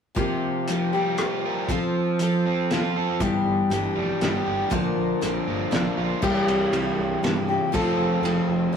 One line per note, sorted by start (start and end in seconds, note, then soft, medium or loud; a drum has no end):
0.15 0.66 C3 medium
0.15 0.67 F3 medium
0.15 0.67 A#3 medium
0.15 0.69 F4 medium
0.15 0.68 G4 medium
0.15 kick loud
0.15 closed hi-hat medium
0.68 0.93 F3 medium
0.68 0.93 A#3 medium
0.68 0.93 F4 medium
0.68 0.92 G4 medium
0.68 closed hi-hat medium
0.93 1.69 G3 medium
0.93 1.17 A#3 soft
0.93 1.18 F4 soft
0.93 1.18 G4 soft
1.17 1.68 F3 soft
1.17 1.69 A#3 medium
1.17 1.69 F4 medium
1.17 1.70 G4 medium
1.17 cross-stick medium
1.17 closed hi-hat medium
1.45 1.70 A#4 medium
1.69 2.18 F3 medium
1.69 2.19 C4 medium
1.69 2.20 F4 medium
1.69 2.20 A4 medium
1.69 kick medium
1.69 closed hi-hat soft
2.19 2.69 F3 medium
2.19 2.70 C4 medium
2.19 2.71 F4 medium
2.19 2.71 A4 medium
2.19 closed hi-hat medium
2.46 3.21 C4 medium
2.71 3.20 F3 medium
2.71 3.21 C4 medium
2.71 3.21 F4 medium
2.71 3.22 A4 medium
2.71 snare medium
2.71 closed hi-hat medium
2.96 3.21 A4 medium
3.20 3.36 G1 medium
3.20 3.71 G2 medium
3.20 3.71 E3 medium
3.20 3.69 G3 medium
3.20 3.70 B3 medium
3.20 3.71 D4 medium
3.20 3.72 G4 medium
3.20 kick medium
3.20 closed hi-hat medium
3.46 3.61 G1 medium
3.70 3.86 G1 medium
3.70 4.72 E3 medium
3.70 4.20 G3 medium
3.70 4.21 B3 medium
3.70 4.22 D4 medium
3.70 4.22 G4 medium
3.70 closed hi-hat medium
3.96 4.12 F1 medium
3.96 4.71 G3 medium
4.21 4.37 G1 medium
4.21 4.71 G3 medium
4.21 4.71 B3 medium
4.21 4.70 D4 medium
4.21 4.72 G4 medium
4.21 snare medium
4.21 closed hi-hat soft
4.46 4.63 G1 medium
4.46 4.72 G4 medium
4.70 4.87 A#1 medium
4.70 5.21 A#2 medium
4.70 5.22 D3 medium
4.70 5.20 F3 medium
4.70 5.21 A#3 medium
4.70 5.22 D4 medium
4.70 5.22 A#4 medium
4.70 kick medium
4.70 closed hi-hat soft
4.97 5.12 A#1 medium
5.21 5.38 A#1 medium
5.21 6.22 D3 medium
5.21 5.70 F3 medium
5.21 5.70 A#3 medium
5.21 5.71 D4 medium
5.21 5.72 A#4 medium
5.21 closed hi-hat medium
5.47 5.63 G1 medium
5.47 6.23 A#3 medium
5.71 5.88 A#1 medium
5.71 6.22 F3 medium
5.71 6.21 A#3 medium
5.71 6.23 D4 soft
5.71 6.23 A#4 medium
5.71 snare medium
5.71 closed hi-hat medium
5.97 6.13 A#1 medium
5.97 6.23 F4 medium
6.22 6.39 C2 medium
6.22 6.73 C3 medium
6.22 7.72 E3 medium
6.22 6.72 G3 medium
6.22 6.73 A#3 medium
6.22 7.73 C4 medium
6.22 7.73 E4 medium
6.22 6.74 G4 medium
6.22 7.73 A#4 medium
6.22 kick loud
6.22 crash medium
6.47 6.64 C2 medium
6.47 ride medium
6.72 6.89 C2 medium
6.72 7.22 G3 medium
6.72 7.23 A#3 medium
6.72 7.25 G4 medium
6.72 ride medium
6.98 7.15 C2 medium
7.23 7.57 G2 medium
7.23 7.49 G3 medium
7.23 7.49 A#3 medium
7.23 7.48 F4 medium
7.23 7.47 G4 medium
7.23 snare medium
7.23 ride soft
7.48 7.73 A#3 soft
7.48 7.73 F4 soft
7.48 7.73 G4 soft
7.72 7.91 F1 medium
7.72 8.22 F3 medium
7.72 8.76 A3 medium
7.72 8.22 C4 medium
7.72 8.23 F4 medium
7.72 8.24 A4 medium
7.72 kick medium
7.72 ride medium
7.98 8.15 F1 medium
8.22 8.40 F1 medium
8.22 8.71 F3 medium
8.22 8.73 C4 medium
8.22 8.74 F4 medium
8.22 8.75 A4 medium
8.22 ride medium
8.49 8.66 F1 medium
8.73 8.76 F3 medium